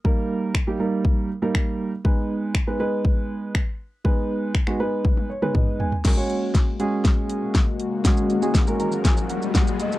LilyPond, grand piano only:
\new Staff \with { instrumentName = "Grand piano" } { \time 4/4 \key fis \major \tempo 4 = 120 << { r1 | r1 | r2 r8 cis''8 dis''8 gis''8 | r1 |
r4. ais''8 gis''8 fis''8 fis''8 dis''8 | } \\ { <g ais dis' ais'>4 r16 <g ais dis' g'>16 <g ais dis' ais'>4 r16 <g ais dis' ais'>4 r16 | <gis b dis' b'>4 r16 <gis b dis' b'>16 <gis b dis' b'>4. r4 | <gis b dis' b'>4 r16 <gis b dis' fis'>16 <gis b dis' b'>4 r16 <gis b dis' b'>4 r16 | <gis cis' fis' ais'>16 <gis cis' fis' cis''>4 r16 <gis cis' fis' gis'>4. r4 |
<gis cis' fis' gis'>8 r16 <gis cis' fis' gis'>8 <gis cis' fis' ais'>4. r4 r16 | } >> }